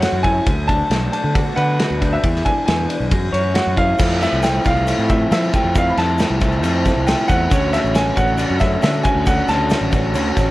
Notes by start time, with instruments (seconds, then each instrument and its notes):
Already playing: clean electric guitar F#3 C#5, analog synth pad F#3 C#4 E4 A4 C#5
0.00 clean electric guitar F#4, upright piano F#5, snare, ride
0.12 fingered electric bass F#2
0.23 clean electric guitar E4, upright piano G#5, kick, ride
0.45 fingered electric bass D2, clean electric guitar D3, analog synth pad B3 D4 D5, kick, ride
0.68 clean electric guitar D4, upright piano A5, kick, ride
0.90 fingered electric bass B1, clean electric guitar A3, snare, ride
1.12 clean electric guitar D4, upright piano A5, ride
1.24 fingered electric bass D3
1.35 clean electric guitar F#4, kick, ride
1.56 fingered electric bass D3, clean electric guitar B4, upright piano F#5, ride
1.79 clean electric guitar F#4, snare, ride
1.90 fingered electric bass D2
2.01 clean electric guitar D4, kick, ride
2.12 upright piano E5
2.23 fingered electric bass E2, clean electric guitar E3, analog synth pad E3 G#4, kick, ride
2.35 snare
2.45 clean electric guitar D4, upright piano G#5, kick, ride
2.65 fingered electric bass E2, clean electric guitar B3, upright piano G#5, snare, ride
2.89 clean electric guitar D4, ride
3.00 fingered electric bass B1
3.11 fingered electric bass F#2, clean electric guitar F#3, analog synth pad A3 C#4 F#4 C#5, kick, ride
3.32 fingered electric bass F#2, clean electric guitar C#5, ride
3.54 clean electric guitar F#4, upright piano F#5, snare, ride
3.67 fingered electric bass F#2
3.76 clean electric guitar E4, upright piano F5, kick, ride
3.99 fingered electric bass F2, clean electric guitar F3 A3 C4 E4, analog synth pad F3 A3 C4 F4 C5, tine electric piano A4, kick, crash, shaker
4.20 clean electric guitar F3 A3 C4 E4, upright piano E5, snare, crash, shaker
4.32 fingered electric bass C2, shaker
4.43 clean electric guitar F3 A3 C4 E4, upright piano G5, snare, crash, shaker
4.64 fingered electric bass C2, clean electric guitar F3 A3 C4 E4, upright piano F5, kick, crash, shaker
4.76 shaker
4.87 clean electric guitar F3 A3 C4 E4, crash, shaker
4.99 fingered electric bass A2, shaker
5.08 clean electric guitar F3 A3 C4 E4, upright piano E5, kick, crash, shaker
5.31 clean electric guitar F3 A3 C4 E4, fingered electric bass F3, upright piano E5, snare, crash, shaker
5.42 shaker
5.53 clean electric guitar F3 A3 C4 E4, upright piano G5, kick, crash, shaker
5.64 fingered electric bass F2
5.75 clean electric guitar F3 A3 C4 E4, analog synth pad C5, upright piano F5, kick, crash, shaker
5.90 upright piano B5
5.97 fingered electric bass F2, clean electric guitar F3 A3 C4 E4, upright piano A5, snare, crash
6.08 shaker
6.18 clean electric guitar F3 A3 C4 E4, snare, crash, shaker
6.30 fingered electric bass C2
6.40 clean electric guitar F3 A3 C4 E4, kick, crash, shaker
6.52 shaker
6.61 fingered electric bass F2, clean electric guitar F3 A3 C4 E4, tine electric piano C5, crash, shaker
6.74 shaker
6.85 clean electric guitar F3 A3 C4 E4, kick, snare, crash, shaker
6.96 fingered electric bass C2
7.06 clean electric guitar F3 A3 C4 E4, upright piano G5, snare, crash, shaker
7.17 shaker
7.28 fingered electric bass E2, clean electric guitar F3 A3 C4 E4, upright piano F#5, kick, crash, shaker
7.49 fingered electric bass D2, analog synth pad C#3 D3 F#4 A4, clean electric guitar D3 A3 C#4 F#4, tine electric piano C#5, kick, crash, shaker
7.72 clean electric guitar D3 A3 C#4 F#4, upright piano E5, snare, crash, shaker
7.84 fingered electric bass A1, shaker
7.94 clean electric guitar D3 A3 C#4 F#4, upright piano G#5, snare, crash, shaker
8.15 fingered electric bass A1, clean electric guitar D3 A3 C#4 F#4, upright piano F#5, kick, crash, shaker
8.27 shaker
8.37 clean electric guitar D3 A3 C#4 F#4, tine electric piano D5, crash, shaker
8.49 fingered electric bass F#2, shaker
8.60 clean electric guitar D3 A3 C#4 F#4, upright piano E5, kick, snare, crash, shaker
8.82 clean electric guitar D3 A3 C#4 F#4, fingered electric bass D3, upright piano E5, snare, crash, shaker
8.93 shaker
9.03 clean electric guitar D3 A3 C#4 F#4, upright piano G#5, kick, crash, shaker
9.15 fingered electric bass D2
9.26 clean electric guitar D3 A3 C#4 F#4, upright piano F#5, kick, crash, shaker
9.48 fingered electric bass D2, clean electric guitar D3 A3 C#4 F#4, upright piano A5, snare, crash, shaker
9.70 clean electric guitar D3 A3 C#4 F#4, snare, crash, shaker
9.81 fingered electric bass A1, shaker
9.92 clean electric guitar D3 A3 C#4 F#4, kick, crash, shaker
10.14 fingered electric bass D2, clean electric guitar D3 A3 C#4 F#4, tine electric piano C#5, crash, shaker
10.26 shaker
10.37 fingered electric bass A1, clean electric guitar D3 A3 C#4 F#4, kick, snare, crash, shaker